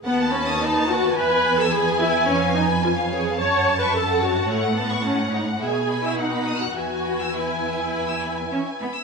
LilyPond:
<<
  \new Staff \with { instrumentName = "Violin section" } { \time 4/4 \key e \major \tempo 4 = 107 a''2 gis''2~ | gis''2 a''2 | fis''2 gis''4 fis''4 | gis''2.~ gis''8 r8 | }
  \new Staff \with { instrumentName = "Violin section" } { \time 4/4 \key e \major << { fis''16 a''16 b''16 dis'''16 b''16 a''16 fis''16 a''16 e''16 gis''16 b''16 e'''16 b''16 gis''16 e''16 gis''16 | cis''16 eis''16 gis''16 b''16 gis''16 eis''16 cis''16 eis''16 cis''16 fis''16 a''16 cis'''16 a''16 fis''16 cis''16 fis''16 | cis''16 fis''16 a''16 cis'''16 a''16 fis''16 cis''16 fis''16 e''16 gis''16 b''16 e'''16 fis''16 b''16 dis'''16 fis'''16 | e''16 gis''16 b''16 e'''16 b''16 gis''16 e''16 gis''16 b''16 e'''16 b''16 gis''16 e''16 gis''16 b''16 e'''16 | } \\ { b'1~ | b'2 cis''2~ | cis''1 | b'2.~ b'8 r8 | } >> }
  \new Staff \with { instrumentName = "Viola section" } { \time 4/4 \key e \major b8 cis'8 dis'8 fis'8 b'8. a'16 gis'8 e'8 | cis'8 dis'8 eis'8 gis'8 cis''8. b'16 a'8 fis'8 | a8 b8 cis'8 dis'8 gis'8. e'16 dis'8. fis'16 | fis'4 e'2~ e'8 r8 | }
  \new Staff \with { instrumentName = "Cello section" } { \clef bass \time 4/4 \key e \major dis,2 e,2 | eis,2 fis,2 | a,2 b,2 | e,2. cis'8 b8 | }
>>